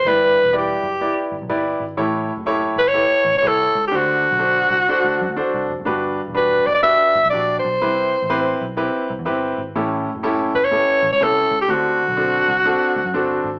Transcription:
X:1
M:4/4
L:1/16
Q:"Swing" 1/4=124
K:Ador
V:1 name="Alto saxophone"
B4 G6 z6 | z6 B ^c4 c A3 G | F12- F2 z2 | z4 B2 d d e4 d2 c2- |
c6 z8 z2 | z6 B ^c4 c A3 G | F12- F2 z2 |]
V:2 name="Grand piano"
[EGBd]2 z2 [EGBd]2 z2 [EGBd]2 z2 [EGBd]2 z2 | [EGA^c]2 z2 [EGAc]2 z2 [EGAc]2 z2 [EGAc]2 z2 | [DFAc]2 z2 [DFAc]2 z2 [DFAc]2 z2 [DFAc]2 z2 | [DFGB]2 z2 [DFGB]2 z2 [DFGB]2 z2 [DFGd]2 z2 |
[CEGB]2 z2 [CEGB]2 z2 [CEGB]2 z2 [CEGB]2 z2 | [^CEGA]2 z2 [CEGA]2 z2 [CEGA]2 z2 [CEGA]2 z2 | [CDFA]2 z2 [CDFA]2 z2 [CDFA]2 z2 [CDFA]2 z2 |]
V:3 name="Grand piano" clef=bass
G,,6 z8 z2 | A,,6 z8 z2 | D,6 z8 z2 | G,,6 z8 z2 |
C,6 z8 z2 | A,,6 z8 z2 | D,6 z8 z2 |]
V:4 name="Picked electric bass" clef=bass
G,,,3 E,,,3 F,,,3 z G,,, B,,, G,,,2 _A,,,2 | A,,,3 F,,,3 G,,,3 z A,,, ^C,, =C,,2 ^C,,2 | D,,3 B,,,3 C,,2 z D,, F,, D,, z C,, =F,,, ^F,,, | G,,,3 E,,,3 F,,,3 z G,,, B,,, _B,,,2 =B,,,2 |
C,,3 A,,,3 B,,,3 z C,, E,, G,,,2 _A,,,2 | A,,,3 F,,,3 G,,,3 z A,,, ^C,, =C,,2 ^C,,2 | D,,3 B,,,3 C,,3 z D,, F,, G,,,2 _A,,,2 |]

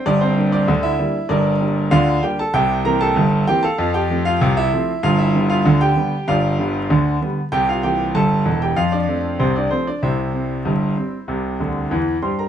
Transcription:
X:1
M:2/4
L:1/16
Q:1/4=96
K:Gdor
V:1 name="Grand piano"
[Dd] [Cc]2 [Dd]2 [Ee]3 | [DBd]4 [Fdf]2 [Gg] [Aa] | [Geg]2 [Bb] [Aa]3 [Gg] [Afa]- | [Afa] [Gg]2 [Ff]2 [Ee]3 |
[Ff] [Ee]2 [Ff]2 [Gg]3 | [Fdf]4 z4 | [Gg] [Ff] [Gg]2 [Aa]3 [Gg] | [Ff] [Dd]3 [Cc] [Dd] [Cc] [Dd] |
[Ece]8- | [Ece]6 [cc'] [Bb] |]
V:2 name="Grand piano" clef=bass
[G,,,G,,]2 [G,B,D]2 [D,,D,]2 [G,B,D]2 | [G,,,G,,]2 [G,B,D]2 [D,,D,]2 [G,B,D]2 | [C,,C,]2 [E,B,C]2 [G,,,G,,]2 [E,B,C]2 | [F,,F,]2 [F,A,C]2 [C,,C,]2 [F,A,C]2 |
[G,,,G,,]2 [D,G,=B,]2 [D,,D,]2 [D,G,B,]2 | [G,,,G,,]2 [D,G,=B,]2 [D,,D,]2 [D,G,B,]2 | [C,,C,]2 [E,B,C]2 [G,,,G,,]2 [E,,,E,,]2 | [F,,F,]2 [F,A,C]2 [C,,C,]2 [F,A,]2 |
[C,,C,]2 [G,C]2 [G,,,G,,]2 [G,C]2 | [C,,C,]2 [D,,D,]2 [E,,E,]2 [G,,G,]2 |]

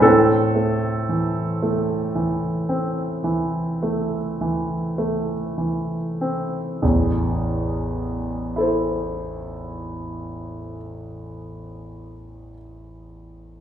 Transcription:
X:1
M:12/8
L:1/8
Q:3/8=35
K:Am
V:1 name="Grand piano"
[CA]8- [CA]3 z | z3 [EAc]8- [EAc] |]
V:2 name="Grand piano" clef=bass
A,, A, E, A, E, C E, A, E, A, E, C | [A,,,E,,]12 |]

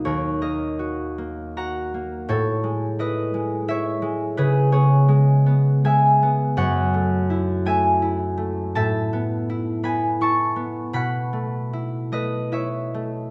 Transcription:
X:1
M:3/4
L:1/8
Q:1/4=82
K:C#dor
V:1 name="Harp"
[FAcd] [Ad]3 [fa]2 | [=Ac]2 [Bd]2 [ce]2 | [GB] [Gc]3 [eg]2 | [K:Bmix] [cf]3 [eg]3 |
[ea]3 [gb] [ac']2 | [fb]3 [Bd] [ce]2 |]
V:2 name="Harp"
[D,,A,CD] A, F A, F A, | =A,, G, E G, E G, | C, B, G, B, G, B, | [K:Bmix] F,, A, E A, E A, |
A,, B, E B, E B, | B,, A, E A, E A, |]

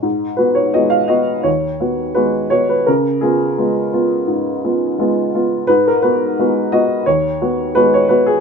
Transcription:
X:1
M:4/4
L:1/16
Q:1/4=86
K:G#dor
V:1 name="Upright piano"
z2 B c d e d2 c4 B2 c B | A2 G12- G2 | B A B4 d2 c4 B c B G |]
V:2 name="Upright piano"
G,,2 [B,F]2 [G,B,F]2 [B,F]2 D,,2 [B,F]2 [G,B,F]2 [B,F]2 | C,2 [B,E]2 [G,B,E]2 [B,E]2 G,,2 [B,E]2 [G,B,E]2 [B,E]2 | G,,2 [B,F]2 [G,B,F]2 [B,F]2 D,,2 [B,F]2 [G,B,F]2 [B,F]2 |]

